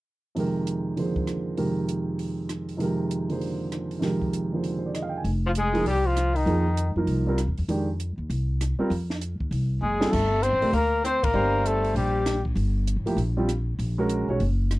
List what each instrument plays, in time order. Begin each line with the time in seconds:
0.35 grand piano F2 C3 D#3 G#3 G4, open hi-hat
0.40 grand piano A#4
0.67 closed hi-hat
0.96 grand piano D3 F3 A#3 G#4 C5, open hi-hat
1.16 kick
1.27 cross-stick, closed hi-hat
1.57 grand piano F2 C3 D#3 G#3 G4 A#4, open hi-hat
1.89 closed hi-hat
2.19 open hi-hat
2.49 cross-stick, closed hi-hat
2.69 open hi-hat
2.77 grand piano F2 C3 D#3 G#3, open hi-hat
2.82 grand piano G4 A#4
3.11 closed hi-hat
3.29 grand piano D3 F3 A#3 G#4 C5, open hi-hat
3.41 open hi-hat
3.72 cross-stick, closed hi-hat
3.91 open hi-hat
3.99 grand piano F2 C3 D#3 G#3, snare, open hi-hat
4.04 grand piano G4 A#4
4.22 kick
4.33 closed hi-hat
4.52 grand piano D3 F3 A#3 G#4 C5
4.64 open hi-hat
4.79 grand piano C5
4.86 grand piano D5
4.94 grand piano D#5, cross-stick, closed hi-hat
5.02 grand piano F5
5.09 grand piano G5
5.17 grand piano G#5
5.24 upright bass F1, open hi-hat
5.46 tenor saxophone F3, trumpet F4
5.55 tenor saxophone G#3, trumpet G#4, closed hi-hat
5.73 grand piano F3 A#3 D#4 G#4, open hi-hat
5.86 upright bass C2, tenor saxophone G3, trumpet G4, open hi-hat
6.05 tenor saxophone F3, trumpet F4
6.17 cross-stick, closed hi-hat
6.34 tenor saxophone D#3, trumpet D#4, open hi-hat
6.46 upright bass F2, grand piano F3 A#3 D#4 G#4, open hi-hat
6.77 closed hi-hat
6.96 upright bass F#2, grand piano F3 A#3 D#4 A#4
7.07 upright bass C2, open hi-hat
7.27 grand piano G3 C4 F4 A#4
7.38 cross-stick, closed hi-hat
7.47 upright bass D#2
7.58 upright bass E2, open hi-hat
7.68 upright bass F2, grand piano D#3 G#3 D4 G4, open hi-hat
8.00 closed hi-hat
8.18 upright bass D#2
8.30 upright bass C2, open hi-hat
8.61 cross-stick, closed hi-hat
8.79 grand piano G3 C4 F4 A#4, muted upright bass stroke
8.90 upright bass F2, open hi-hat
9.10 snare
9.21 closed hi-hat
9.40 upright bass D#2, kick
9.51 upright bass C2, open hi-hat
9.81 upright bass F#1, tenor saxophone G#3, trumpet G#4
10.00 grand piano G3 C4 F4 A4, snare
10.11 upright bass G1, tenor saxophone A3, trumpet A4, kick, crash
10.42 tenor saxophone C4, trumpet C5, closed hi-hat
10.52 upright bass A1
10.61 upright bass F1, grand piano A3 D4 G4 A#4, open hi-hat
10.73 upright bass D2, tenor saxophone A#3, trumpet A#4, open hi-hat
11.04 tenor saxophone C4, trumpet C5, cross-stick, closed hi-hat
11.23 upright bass A1, tenor saxophone A#3, trumpet A#4, kick, ride
11.33 upright bass G1, grand piano G3 D4 G4 C5
11.65 tenor saxophone A3, trumpet A4, closed hi-hat
11.84 open hi-hat
11.95 upright bass A#1, tenor saxophone G3, trumpet G4, open hi-hat
12.26 cross-stick, snare, closed hi-hat
12.45 kick
12.55 upright bass G1, open hi-hat
12.87 closed hi-hat
12.96 upright bass A1
13.06 upright bass F1, grand piano F3 A#3 E4 G4, open hi-hat
13.16 upright bass A#1, open hi-hat
13.37 grand piano G3 C4 F4 G4
13.49 cross-stick, closed hi-hat
13.79 upright bass A#1, open hi-hat
13.98 grand piano G#3 C#4 F#4 A#4
14.09 closed hi-hat
14.29 upright bass B1, grand piano G#3 C#4 F#4 C#5
14.40 upright bass F#1, open hi-hat
14.71 cross-stick, closed hi-hat